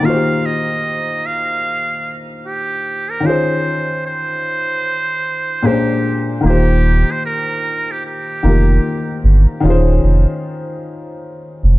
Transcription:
0.00 felt piano D#3 A#3
0.05 felt piano F4 F#4, muted trumpet F5
0.10 felt piano C5
0.14 felt piano G4
0.46 muted trumpet D#5
1.26 muted trumpet F5
2.46 muted trumpet G4
3.11 muted trumpet A#4
3.20 felt piano D#3 C#4
3.25 felt piano F4 G#4, muted trumpet C5
3.30 felt piano C5
4.06 muted trumpet C5
5.62 felt piano A#2 G#3 A#3 C#4, muted trumpet G4
5.67 felt piano C5
5.71 felt piano D4
6.41 sub bass D#1, felt piano D#3 A#3
6.45 felt piano F4 G4, muted trumpet G4
6.50 felt piano C5
7.11 muted trumpet C5
7.26 muted trumpet A#4
7.91 muted trumpet G4
8.06 muted trumpet G4
8.43 sub bass F1, felt piano D#3 A#3 F4 G4
8.48 felt piano A#4
9.24 sub bass G1
9.60 sub bass D#1, felt piano D#3 C#4
9.65 felt piano F4 G#4
9.70 felt piano C5
10.03 sub bass F1
11.63 sub bass F1

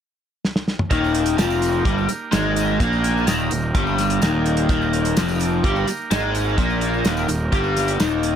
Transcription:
0.45 snare
0.56 snare
0.68 snare
0.79 mid tom
0.89 picked electric bass D#1, overdriven electric guitar D#2 D#3, transistor combo organ A#3 D#4 G4 A#4, kick, closed hi-hat, tambourine
1.04 tambourine
1.14 closed hi-hat, tambourine
1.26 closed hi-hat, tambourine
1.38 picked electric bass F1, overdriven electric guitar F2 F3, snare, closed hi-hat, tambourine
1.50 tambourine
1.62 closed hi-hat, tambourine
1.75 tambourine
1.85 picked electric bass G1, overdriven electric guitar G2 G3, kick, closed hi-hat
1.98 tambourine
2.09 muted overdriven electric guitar stroke, muted picked electric bass stroke, closed hi-hat, tambourine
2.32 picked electric bass G#1, overdriven electric guitar G#2 G#3, snare, closed hi-hat, tambourine
2.56 closed hi-hat, tambourine
2.79 picked electric bass A#1, overdriven electric guitar A#2 A#3, kick, closed hi-hat, tambourine
2.93 tambourine
3.04 closed hi-hat, tambourine
3.17 tambourine
3.26 picked electric bass D#1, overdriven electric guitar D#2 D#3, snare, closed hi-hat, tambourine
3.40 tambourine
3.51 picked electric bass D#1, overdriven electric guitar D#2, closed hi-hat, tambourine
3.62 tambourine
3.75 picked electric bass G1, overdriven electric guitar G2 G3, kick, closed hi-hat
3.87 tambourine
3.98 snare, closed hi-hat, tambourine
4.10 closed hi-hat
4.21 picked electric bass D#1, overdriven electric guitar D#2 D#3, snare, closed hi-hat, tambourine
4.46 closed hi-hat
4.57 closed hi-hat
4.69 picked electric bass D#1, overdriven electric guitar D#2 D#3, kick, closed hi-hat, tambourine
4.82 tambourine
4.93 closed hi-hat, tambourine
5.05 closed hi-hat
5.17 picked electric bass F1, overdriven electric guitar F2 F3, snare, closed hi-hat, tambourine
5.28 tambourine
5.39 closed hi-hat, tambourine
5.52 tambourine
5.63 picked electric bass G1, overdriven electric guitar G2 G3, kick, closed hi-hat
5.76 tambourine
5.87 muted picked electric bass stroke, muted overdriven electric guitar stroke, closed hi-hat, tambourine
6.11 picked electric bass G#1, overdriven electric guitar G#2 G#3, snare, closed hi-hat, tambourine
6.35 closed hi-hat, tambourine
6.58 picked electric bass A#1, overdriven electric guitar A#2 A#3, kick, closed hi-hat, tambourine
6.70 tambourine
6.81 closed hi-hat, tambourine
6.94 tambourine
7.05 picked electric bass D#1, overdriven electric guitar D#2 D#3, snare, closed hi-hat, tambourine
7.17 tambourine
7.28 picked electric bass D#1, overdriven electric guitar D#2, closed hi-hat, tambourine
7.52 picked electric bass G1, overdriven electric guitar G2 G3, kick, closed hi-hat, tambourine
7.64 tambourine
7.77 snare, closed hi-hat, tambourine
7.88 closed hi-hat, tambourine
7.99 picked electric bass D#1, overdriven electric guitar D#2 D#3, snare, closed hi-hat, tambourine
8.11 tambourine
8.23 closed hi-hat

